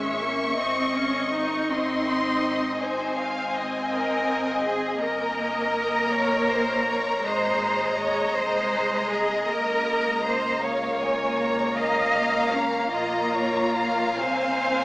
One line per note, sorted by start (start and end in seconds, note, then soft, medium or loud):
0.00 0.55 G#1 medium
0.00 0.20 G#3 medium
0.00 0.60 C#4 medium
0.00 0.59 E5 medium
0.00 1.70 C#6 medium
0.21 0.59 A#3 medium
0.59 4.98 G#1 medium
0.59 0.97 C4 medium
0.59 1.69 C4 medium
0.59 1.69 D#5 medium
0.96 1.34 C#4 medium
1.33 1.70 D#4 medium
1.70 2.79 C4 medium
1.70 3.15 D#4 medium
1.70 2.79 D#5 medium
1.70 2.81 C6 medium
2.80 4.97 C4 medium
2.80 3.18 C5 medium
2.80 4.98 G#5 medium
3.18 3.54 F5 medium
3.55 5.01 D#5 medium
3.91 4.61 A#4 medium
4.65 5.02 G#4 medium
5.01 6.11 G1 medium
5.01 7.20 A#3 medium
5.01 7.24 A#4 medium
5.01 6.11 D#5 medium
5.01 9.45 A#5 medium
6.13 7.24 A#1 medium
6.13 6.51 C#5 medium
6.52 6.88 C5 medium
6.88 7.24 C#5 medium
7.23 8.34 G#1 medium
7.23 8.31 G#3 medium
7.23 7.97 C5 medium
7.23 10.64 D#5 medium
7.98 8.34 C#5 medium
8.34 9.46 C2 medium
8.34 9.46 G#3 medium
8.34 9.10 C5 medium
9.10 9.49 G#4 medium
9.48 12.92 C#2 medium
9.48 10.62 A#3 medium
9.48 10.26 A#4 loud
9.48 10.61 A#5 medium
10.26 10.63 C5 medium
10.63 14.15 A#3 medium
10.63 11.76 C#5 medium
10.63 11.74 C#5 medium
10.63 11.01 F5 medium
11.01 11.39 G#5 medium
11.40 11.76 A#5 medium
11.76 12.53 D#5 medium
11.76 12.92 F5 medium
11.76 12.90 A#5 medium
12.53 12.92 C#4 medium
12.92 14.17 A#1 medium
12.92 14.17 F4 medium
12.92 13.33 D#5 medium
12.92 14.17 A#5 medium
13.33 13.77 C#5 medium
13.76 14.85 F5 medium
14.19 14.85 C2 medium
14.19 14.85 C4 medium
14.19 14.85 C5 medium
14.19 14.85 G#5 medium